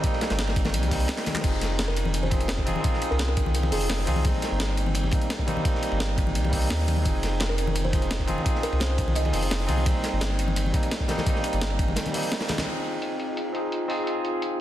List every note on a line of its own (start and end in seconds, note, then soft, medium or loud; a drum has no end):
0.00 0.88 G3 medium
0.00 0.03 A#3 medium
0.00 0.89 A#3 medium
0.00 0.05 C4 medium
0.00 0.07 D#4 loud
0.00 kick loud
0.00 closed hi-hat loud
0.04 0.90 C4 medium
0.04 0.91 D#4 medium
0.04 ride medium
0.13 snare soft
0.21 snare loud
0.21 closed hi-hat medium
0.21 ride medium
0.30 0.75 G1 medium
0.30 snare loud
0.30 closed hi-hat soft
0.30 ride medium
0.39 snare loud
0.39 closed hi-hat loud
0.39 ride medium
0.47 snare medium
0.47 ride medium
0.56 kick loud
0.56 closed hi-hat medium
0.56 ride medium
0.65 snare loud
0.65 ride medium
0.65 high conga medium
0.74 1.09 C2 medium
0.74 closed hi-hat medium
0.74 ride medium
0.83 closed hi-hat soft
0.83 ride soft
0.83 high conga medium
0.88 1.40 G3 medium
0.88 1.41 A#3 medium
0.88 kick medium
0.88 closed hi-hat medium
0.92 1.39 C4 medium
0.92 1.42 D#4 medium
0.92 open hi-hat medium
1.00 closed hi-hat soft
1.08 snare loud
1.08 closed hi-hat loud
1.08 ride medium
1.18 snare loud
1.18 clap medium
1.18 ride medium
1.26 snare loud
1.26 closed hi-hat medium
1.26 ride medium
1.26 high conga medium
1.34 snare medium
1.34 clap loud
1.34 closed hi-hat soft
1.34 ride medium
1.34 high conga medium
1.39 2.28 C4 medium
1.39 2.29 D#4 medium
1.39 snare medium
1.39 ride medium
1.44 2.74 F1 loud
1.44 2.30 F4 medium
1.44 2.31 G#4 medium
1.44 kick loud
1.44 closed hi-hat loud
1.44 crash medium
1.44 ride medium
1.61 snare medium
1.61 closed hi-hat medium
1.61 ride medium
1.79 snare loud
1.79 closed hi-hat loud
1.79 ride medium
1.88 2.09 A#4 medium
1.88 snare soft
1.97 closed hi-hat medium
1.97 ride medium
2.05 high conga medium
2.14 closed hi-hat medium
2.14 ride medium
2.23 2.44 C5 medium
2.23 high conga medium
2.30 2.64 C4 medium
2.30 2.64 D#4 medium
2.30 2.65 F4 medium
2.30 2.66 G#4 medium
2.30 kick loud
2.30 closed hi-hat medium
2.30 ride medium
2.40 closed hi-hat soft
2.40 ride soft
2.48 snare loud
2.48 closed hi-hat loud
2.48 ride medium
2.57 kick medium
2.57 snare soft
2.65 2.80 C4 loud
2.65 2.82 D#4 medium
2.65 2.83 F4 medium
2.65 2.83 G#4 loud
2.65 closed hi-hat medium
2.65 ride medium
2.65 high conga medium
2.76 high conga medium
2.81 3.68 C4 medium
2.81 3.70 D#4 medium
2.81 kick loud
2.81 closed hi-hat medium
2.81 ride medium
2.86 3.71 F4 medium
2.86 3.72 G#4 medium
2.93 snare soft
3.02 closed hi-hat medium
3.02 ride medium
3.11 3.71 C2 medium
3.11 3.27 A#4 medium
3.11 ride soft
3.19 snare loud
3.19 closed hi-hat medium
3.19 ride medium
3.28 3.49 A#4 medium
3.28 ride soft
3.37 kick loud
3.37 closed hi-hat medium
3.37 ride medium
3.46 high conga medium
3.55 closed hi-hat medium
3.55 ride medium
3.63 ride soft
3.63 high conga medium
3.71 4.06 F1 medium
3.71 4.04 C4 medium
3.71 4.05 D#4 medium
3.71 4.05 F4 medium
3.71 3.99 G#4 medium
3.71 4.06 G#4 medium
3.71 closed hi-hat medium
3.71 open hi-hat medium
3.81 closed hi-hat soft
3.90 snare loud
3.90 closed hi-hat medium
3.90 ride medium
3.98 snare soft
4.05 4.32 C2 medium
4.05 4.22 C4 loud
4.05 4.22 D#4 medium
4.05 4.23 F4 medium
4.05 4.24 G#4 loud
4.05 closed hi-hat medium
4.05 ride medium
4.05 high conga medium
4.16 high conga medium
4.22 5.09 G3 medium
4.22 5.10 A#3 medium
4.22 kick loud
4.22 closed hi-hat medium
4.22 ride medium
4.28 5.12 D#4 medium
4.42 snare soft
4.42 closed hi-hat medium
4.42 ride medium
4.51 5.11 G1 medium
4.60 snare loud
4.60 closed hi-hat medium
4.60 ride medium
4.69 snare soft
4.77 closed hi-hat medium
4.77 ride medium
4.86 high conga medium
4.94 closed hi-hat medium
4.94 ride medium
5.04 high conga medium
5.11 5.45 G3 medium
5.11 5.45 A#3 medium
5.11 5.46 C4 medium
5.11 5.46 D#4 medium
5.11 kick loud
5.11 closed hi-hat medium
5.11 ride medium
5.21 closed hi-hat soft
5.21 ride soft
5.30 snare loud
5.30 closed hi-hat medium
5.30 ride medium
5.39 kick medium
5.39 snare soft
5.46 5.60 G3 loud
5.46 5.63 A#3 medium
5.46 5.63 C4 medium
5.46 5.64 D#4 loud
5.46 closed hi-hat medium
5.46 ride medium
5.46 high conga medium
5.57 high conga medium
5.62 6.48 G3 medium
5.62 6.50 A#3 medium
5.62 kick loud
5.62 closed hi-hat medium
5.62 ride medium
5.66 6.51 C4 medium
5.66 6.52 D#4 medium
5.75 snare soft
5.83 closed hi-hat medium
5.83 ride medium
5.92 6.37 G1 medium
5.92 ride soft
6.00 snare loud
6.00 closed hi-hat medium
6.00 ride medium
6.08 ride soft
6.18 kick loud
6.18 closed hi-hat medium
6.18 ride medium
6.27 high conga medium
6.35 6.70 C2 medium
6.35 closed hi-hat medium
6.35 ride medium
6.44 ride soft
6.44 high conga medium
6.49 7.02 G3 medium
6.49 7.03 A#3 medium
6.49 kick medium
6.49 closed hi-hat medium
6.49 open hi-hat medium
6.54 7.01 C4 medium
6.54 7.03 D#4 medium
6.62 closed hi-hat soft
6.70 7.04 D#2 loud
6.70 snare loud
6.70 closed hi-hat medium
6.70 ride medium
6.78 snare soft
6.88 closed hi-hat medium
6.88 ride medium
6.88 high conga medium
6.97 high conga medium
7.02 8.36 F1 loud
7.02 7.89 C4 medium
7.02 7.90 D#4 medium
7.02 kick loud
7.02 closed hi-hat medium
7.02 ride medium
7.06 7.92 F4 medium
7.06 7.93 G#4 medium
7.23 snare medium
7.23 closed hi-hat medium
7.23 ride medium
7.40 snare loud
7.40 closed hi-hat medium
7.40 ride medium
7.49 7.70 A#4 medium
7.49 snare soft
7.58 closed hi-hat medium
7.58 ride medium
7.67 high conga medium
7.75 closed hi-hat medium
7.75 ride medium
7.85 8.06 C5 medium
7.85 high conga medium
7.92 8.25 C4 medium
7.92 8.26 D#4 medium
7.92 8.27 F4 medium
7.92 8.27 G#4 medium
7.92 kick loud
7.92 closed hi-hat medium
7.92 ride medium
8.02 closed hi-hat soft
8.02 ride soft
8.11 snare loud
8.11 closed hi-hat medium
8.11 ride medium
8.19 kick medium
8.19 snare soft
8.27 8.41 C4 loud
8.27 8.44 D#4 medium
8.27 8.44 F4 medium
8.27 8.45 G#4 loud
8.27 closed hi-hat medium
8.27 ride medium
8.27 high conga medium
8.38 high conga medium
8.42 9.30 C4 medium
8.42 9.31 D#4 medium
8.42 kick loud
8.42 closed hi-hat medium
8.46 9.32 F4 medium
8.46 9.33 G#4 medium
8.46 ride medium
8.55 snare soft
8.63 8.79 A#4 medium
8.63 closed hi-hat medium
8.63 ride medium
8.72 9.32 C2 medium
8.72 ride soft
8.80 8.87 C5 medium
8.80 snare loud
8.80 closed hi-hat medium
8.80 ride medium
8.90 8.95 C5 medium
8.90 ride soft
8.98 kick loud
8.98 closed hi-hat medium
8.98 ride medium
9.08 high conga medium
9.15 9.42 D#5 medium
9.15 closed hi-hat medium
9.15 ride medium
9.25 ride soft
9.25 high conga medium
9.32 9.67 F1 medium
9.32 9.66 C4 medium
9.32 9.66 D#4 medium
9.32 9.67 F4 medium
9.32 9.67 G#4 medium
9.32 closed hi-hat medium
9.32 open hi-hat medium
9.43 closed hi-hat soft
9.51 snare loud
9.51 closed hi-hat medium
9.51 ride medium
9.60 snare soft
9.67 9.94 C2 medium
9.67 9.83 C4 medium
9.67 9.84 D#4 medium
9.67 9.84 F4 medium
9.67 9.85 G#4 loud
9.67 closed hi-hat medium
9.67 ride medium
9.67 high conga medium
9.78 high conga medium
9.83 10.70 G3 medium
9.83 10.71 A#3 medium
9.83 kick loud
9.83 closed hi-hat loud
9.83 ride medium
9.87 10.73 C4 medium
9.87 10.74 D#4 medium
10.03 snare medium
10.03 closed hi-hat medium
10.03 ride medium
10.13 10.73 G1 medium
10.21 snare loud
10.21 closed hi-hat medium
10.21 ride medium
10.30 snare soft
10.39 closed hi-hat medium
10.39 ride medium
10.48 high conga medium
10.56 closed hi-hat medium
10.56 ride medium
10.66 high conga medium
10.72 11.06 G3 medium
10.72 11.07 A#3 medium
10.72 11.07 C4 medium
10.72 11.08 D#4 medium
10.72 kick loud
10.72 closed hi-hat medium
10.72 ride medium
10.83 closed hi-hat soft
10.83 ride soft
10.91 snare loud
10.91 closed hi-hat medium
10.91 ride medium
11.00 kick medium
11.00 snare soft
11.07 11.22 G3 loud
11.07 11.24 A#3 medium
11.07 11.25 C4 medium
11.07 11.25 D#4 loud
11.07 snare loud
11.07 closed hi-hat medium
11.07 ride medium
11.07 high conga medium
11.18 snare loud
11.18 ride medium
11.18 high conga medium
11.23 12.09 G3 medium
11.23 12.12 A#3 medium
11.23 kick loud
11.23 closed hi-hat loud
11.23 ride medium
11.28 12.13 C4 medium
11.28 12.14 D#4 medium
11.35 snare soft
11.44 snare soft
11.44 closed hi-hat medium
11.44 ride medium
11.53 11.97 G1 medium
11.53 closed hi-hat soft
11.53 ride soft
11.61 snare loud
11.61 closed hi-hat loud
11.61 ride medium
11.70 ride soft
11.79 kick loud
11.79 closed hi-hat medium
11.79 ride medium
11.88 high conga medium
11.96 snare loud
11.96 closed hi-hat loud
11.96 ride medium
12.05 snare soft
12.05 closed hi-hat soft
12.05 high conga medium
12.11 12.63 G3 medium
12.11 12.64 A#3 medium
12.11 closed hi-hat medium
12.11 open hi-hat medium
12.15 12.62 C4 medium
12.15 12.64 D#4 medium
12.23 closed hi-hat soft
12.32 snare loud
12.32 closed hi-hat medium
12.32 ride medium
12.40 snare loud
12.40 snare medium
12.40 ride medium
12.48 snare medium
12.48 snare loud
12.48 closed hi-hat medium
12.48 ride medium
12.48 high conga medium
12.58 snare loud
12.58 snare medium
12.58 closed hi-hat soft
12.58 ride medium
12.58 high conga medium
12.63 13.51 C4 medium
12.63 14.61 C4 medium
12.63 13.52 D#4 medium
12.63 14.61 F4 medium
12.63 14.61 G#4 medium
12.63 14.61 D#5 medium
12.63 closed hi-hat medium
12.68 13.53 F4 medium
12.68 13.54 G#4 medium
12.84 closed hi-hat medium
13.02 closed hi-hat medium
13.20 closed hi-hat medium
13.37 closed hi-hat medium
13.53 13.87 C4 medium
13.53 13.87 D#4 medium
13.53 13.88 F4 medium
13.53 13.88 G#4 medium
13.53 closed hi-hat medium
13.72 closed hi-hat medium
13.88 14.03 C4 medium
13.88 14.05 D#4 medium
13.88 14.05 F4 medium
13.88 14.06 G#4 loud
13.88 open hi-hat medium
14.04 14.61 C4 medium
14.04 14.61 D#4 medium
14.04 closed hi-hat medium
14.08 14.61 F4 medium
14.08 14.61 G#4 medium
14.25 closed hi-hat medium
14.42 closed hi-hat medium